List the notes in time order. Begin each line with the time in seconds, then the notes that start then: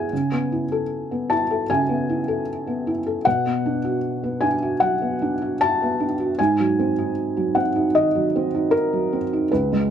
Already playing: G#3 B3 E4 G#4 F#5 G#5
0.13 C#3
0.32 B3
0.52 E4
0.72 A4
1.11 B3
1.30 E4 A5
1.51 A4
1.70 C#3 G#5
1.89 B3
2.09 E4
2.28 A4
2.67 B3
2.87 E4
3.06 A4
3.25 B2 F#5
3.46 B3
3.66 D4
3.85 F#4
4.23 B3
4.41 D4 G#5
4.62 F#4
4.80 F#3 F#5
5.02 B3
5.22 D4
5.42 F#4
5.61 A5
5.82 B3
6.00 D4
6.20 F#4
6.39 G#2 G#5
6.60 F#3
6.79 C4
6.98 D#4
7.37 F#3
7.55 C4 F#5
7.76 D#4
7.95 D#3 D#5
8.15 F#3
8.36 C4
8.55 D#4
8.71 A#4
8.93 F#3
9.13 C4
9.33 D#4
9.52 C#2 B4
9.72 G#3